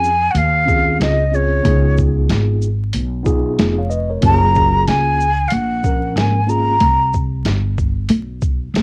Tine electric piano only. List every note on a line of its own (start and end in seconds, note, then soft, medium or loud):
0.00 0.12 G#4 medium
0.66 1.21 C4 medium
0.66 1.21 C#4 medium
0.66 1.21 F4 medium
0.66 1.22 G#4 medium
1.31 1.59 C4 medium
1.31 1.59 C#4 medium
1.31 1.60 F4 medium
1.31 1.60 G#4 medium
1.63 2.66 B3 medium
1.63 2.66 D#4 medium
1.63 2.67 F4 medium
1.63 2.67 G#4 medium
3.23 3.79 B3 medium
3.23 3.79 D#4 medium
3.23 3.80 F4 medium
3.23 3.80 G#4 loud
3.78 3.90 C#5 medium
3.78 3.90 F5 medium
3.90 4.10 B4 medium
3.90 4.09 D#5 medium
4.10 4.41 A#4 medium
4.10 4.41 C#5 medium
4.21 5.24 A#3 medium
4.21 5.24 C#4 medium
4.21 5.25 F4 medium
4.21 4.32 G4 medium
4.30 5.29 G#4 medium
5.83 6.38 F3 medium
5.83 6.37 A#3 medium
5.83 6.38 C#4 medium
5.83 6.39 A#4 medium
6.46 6.74 A#3 medium
6.46 6.75 C#4 medium
6.46 6.75 F4 medium
6.46 6.76 G#4 medium